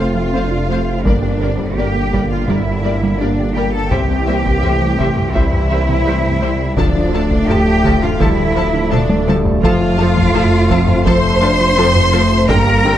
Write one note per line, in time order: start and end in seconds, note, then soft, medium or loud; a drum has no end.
0.00 0.26 F1 medium
0.00 1.07 F1 medium
0.00 1.01 C3 soft
0.00 1.01 A3 soft
0.00 0.34 C4 medium
0.00 1.05 F4 medium
0.00 1.03 F5 medium
0.15 0.26 F3 medium
0.33 0.97 F1 soft
0.33 0.42 A3 soft
0.33 0.44 C4 medium
0.33 0.70 D4 medium
0.33 0.43 C5 soft
0.33 0.44 F5 soft
0.51 0.62 F4 medium
0.68 0.80 F3 medium
0.68 0.78 A3 soft
0.68 1.04 C4 medium
0.68 0.78 C5 soft
0.68 0.79 F5 soft
1.05 3.93 G1 medium
1.05 1.69 G1 medium
1.05 3.87 A#2 medium
1.05 3.87 D3 soft
1.05 1.16 G3 medium
1.05 1.14 G3 soft
1.05 1.41 A#3 medium
1.05 1.77 D4 medium
1.05 1.14 A#4 soft
1.05 1.75 D5 medium
1.05 1.15 D5 medium
1.05 taiko medium
1.22 1.33 G4 medium
1.41 1.49 G3 soft
1.41 1.77 C4 medium
1.41 1.52 G4 medium
1.41 1.49 A#4 soft
1.41 1.51 D5 soft
1.59 1.70 G3 medium
1.59 taiko medium
1.77 2.41 G1 medium
1.77 1.86 G3 soft
1.77 1.87 A#3 medium
1.77 2.50 A#3 medium
1.77 2.31 G4 medium
1.77 1.86 A#4 soft
1.77 1.87 D5 soft
1.77 2.30 G5 medium
1.95 2.06 A#3 medium
2.13 2.21 G3 soft
2.13 2.24 G3 medium
2.13 2.21 A#4 soft
2.13 2.22 D5 soft
2.13 taiko medium
2.30 2.48 F4 medium
2.30 2.42 G4 medium
2.30 2.48 F5 medium
2.48 3.12 G1 medium
2.48 2.83 G3 soft
2.48 2.57 G3 soft
2.48 2.60 G3 medium
2.48 3.20 E4 medium
2.48 2.57 A#4 soft
2.48 2.58 D5 soft
2.48 3.20 E5 medium
2.48 taiko medium
2.84 2.92 G3 soft
2.84 3.20 A#3 medium
2.84 2.96 A#3 medium
2.84 2.92 A#4 soft
2.84 2.92 D5 soft
3.03 3.14 G3 medium
3.20 3.83 G1 medium
3.20 3.29 G3 soft
3.20 3.92 A#3 medium
3.20 3.56 D4 medium
3.20 3.32 D4 medium
3.20 3.29 A#4 medium
3.20 3.55 D5 medium
3.20 3.29 D5 soft
3.40 3.50 G4 medium
3.54 3.64 G3 soft
3.54 3.67 G3 medium
3.54 3.73 G4 medium
3.54 3.65 A#4 medium
3.54 3.64 D5 soft
3.54 3.72 G5 medium
3.72 3.91 A4 medium
3.72 3.90 A5 medium
3.89 6.78 C2 medium
3.89 4.54 C2 medium
3.89 4.03 C3 medium
3.89 6.60 E3 medium
3.89 4.00 G3 soft
3.89 6.60 C4 medium
3.89 4.27 C4 medium
3.89 5.34 G4 medium
3.89 4.00 C5 soft
3.89 3.99 E5 medium
3.89 5.33 G5 medium
3.89 taiko medium
4.11 4.21 C4 medium
4.26 4.36 G3 soft
4.26 4.63 A#3 medium
4.26 4.38 C4 medium
4.26 4.36 C5 soft
4.26 4.34 E5 medium
4.45 4.56 C3 medium
4.45 taiko medium
4.62 5.26 C2 medium
4.62 4.74 E3 medium
4.62 4.72 G3 medium
4.62 5.19 A3 medium
4.62 4.72 C5 medium
4.62 4.70 E5 medium
4.62 taiko low-mid soft
4.82 4.92 E3 medium
4.98 5.10 C3 medium
4.98 5.07 G3 soft
4.98 5.07 C5 soft
4.98 5.06 E5 soft
4.98 taiko medium
5.17 5.28 C4 medium
5.17 taiko low-mid soft
5.33 5.97 C2 medium
5.33 5.46 C3 medium
5.33 5.43 G3 medium
5.33 5.70 G3 medium
5.33 6.77 E4 medium
5.33 5.43 C5 medium
5.33 5.41 E5 medium
5.33 6.74 E5 medium
5.33 taiko medium
5.53 taiko low-mid soft
5.69 5.82 E3 medium
5.69 5.79 G3 soft
5.69 6.07 A#3 medium
5.69 5.79 C5 medium
5.69 5.77 E5 medium
5.89 5.99 C3 medium
6.06 6.69 C2 medium
6.06 6.14 G3 medium
6.06 6.18 G3 medium
6.06 6.42 A3 medium
6.06 6.14 C5 medium
6.06 6.14 E5 medium
6.24 6.35 C4 medium
6.24 taiko low-mid soft
6.41 6.53 C3 medium
6.41 6.49 G3 medium
6.41 6.78 G3 medium
6.41 6.49 C5 medium
6.41 6.50 E5 soft
6.76 9.64 D1 medium
6.76 7.40 D2 medium
6.76 6.88 D3 medium
6.76 12.44 F3 medium
6.76 7.12 F3 medium
6.76 6.86 F3 medium
6.76 12.48 A3 medium
6.76 7.47 D4 medium
6.76 6.86 A4 medium
6.76 7.47 D5 medium
6.76 6.86 A5 medium
6.76 taiko loud
6.96 7.06 D4 medium
7.13 7.21 F3 medium
7.13 8.20 A3 medium
7.13 7.24 D4 medium
7.13 7.21 A4 medium
7.13 7.22 A5 medium
7.31 7.42 D3 medium
7.31 taiko medium
7.48 8.12 D2 medium
7.48 7.56 F3 medium
7.48 7.60 F3 medium
7.48 8.02 G4 loud
7.48 7.56 A4 medium
7.48 8.02 G5 medium
7.48 7.58 A5 medium
7.48 taiko low-mid medium
7.68 7.78 F3 medium
7.84 7.95 D3 medium
7.84 7.93 F3 medium
7.84 7.93 A4 medium
7.84 7.93 A5 medium
7.84 taiko medium
8.02 8.13 D4 medium
8.02 8.20 F4 medium
8.02 8.20 F5 medium
8.02 taiko low-mid soft
8.19 8.83 D2 medium
8.19 8.31 D3 loud
8.19 8.28 F3 medium
8.19 8.55 G3 medium
8.19 8.91 E4 medium
8.19 8.28 A4 medium
8.19 8.92 E5 medium
8.19 8.29 A5 medium
8.19 taiko medium
8.39 taiko low-mid medium
8.55 8.63 F3 medium
8.55 8.66 F3 medium
8.55 8.91 F3 medium
8.55 8.63 A4 medium
8.55 8.65 A5 medium
8.74 8.85 D3 medium
8.91 9.55 D2 medium
8.91 8.99 F3 medium
8.91 9.27 A3 medium
8.91 9.02 A3 medium
8.91 9.27 D4 medium
8.91 8.99 A4 medium
8.91 9.27 D5 medium
8.91 8.99 A5 medium
8.91 taiko mid medium
9.09 9.20 D4 medium
9.09 taiko high medium
9.26 9.38 D3 loud
9.26 9.35 F3 medium
9.26 9.62 G3 medium
9.26 9.35 A4 medium
9.26 9.36 A5 medium
9.26 taiko high loud
9.45 taiko low loud
9.62 12.50 F1 medium
9.62 10.26 F2 medium
9.62 9.74 F3 loud
9.62 9.98 F3 medium
9.62 9.72 F3 medium
9.62 11.02 F4 loud
9.62 9.72 A4 medium
9.62 11.02 F5 medium
9.62 9.72 A5 medium
9.62 taiko medium
9.81 9.92 F4 medium
9.98 10.08 F3 medium
9.98 10.33 A3 medium
9.98 10.09 F4 medium
9.98 10.08 A4 medium
9.98 10.06 A5 medium
10.17 10.27 F3 loud
10.17 taiko medium
10.34 10.97 F2 medium
10.34 10.43 F3 medium
10.34 10.69 A3 medium
10.34 10.45 A3 medium
10.34 10.43 A4 medium
10.34 10.43 A5 medium
10.34 taiko low-mid medium
10.53 10.63 A3 medium
10.70 10.78 F3 medium
10.70 10.81 F3 loud
10.70 11.06 C4 medium
10.70 10.79 A4 medium
10.70 10.78 A5 medium
10.70 taiko medium
10.88 10.99 F4 medium
10.88 taiko low-mid medium
11.06 11.69 F2 medium
11.06 11.15 F3 medium
11.06 11.17 F3 loud
11.06 11.42 A3 medium
11.06 11.15 A4 medium
11.06 12.49 C5 loud
11.06 11.14 A5 medium
11.06 12.46 C6 loud
11.06 taiko medium
11.24 taiko low-mid medium
11.41 11.50 F3 medium
11.41 11.53 A3 medium
11.41 11.77 D4 medium
11.41 11.50 A4 medium
11.41 11.49 A5 medium
11.61 11.71 F3 medium
11.76 12.40 F2 medium
11.76 11.85 F3 medium
11.76 12.12 C4 medium
11.76 11.88 C4 medium
11.76 11.85 A4 medium
11.76 11.85 A5 medium
11.95 12.06 F4 medium
11.95 taiko low-mid medium
12.13 12.21 F3 medium
12.13 12.24 F3 loud
12.13 12.48 A3 medium
12.13 12.21 A4 medium
12.13 12.21 A5 medium
12.48 12.98 G1 medium
12.48 12.98 G2 loud
12.48 12.56 D3 medium
12.48 12.98 D3 medium
12.48 12.59 G3 loud
12.48 12.98 G3 medium
12.48 12.85 A#3 medium
12.48 12.56 A#4 medium
12.48 12.98 A#4 loud
12.48 12.57 G5 medium
12.48 12.98 A#5 loud
12.48 taiko loud
12.67 12.77 G4 medium
12.84 12.93 D3 medium
12.84 12.98 C4 loud
12.84 12.96 G4 medium
12.84 12.93 A#4 medium
12.84 12.93 G5 medium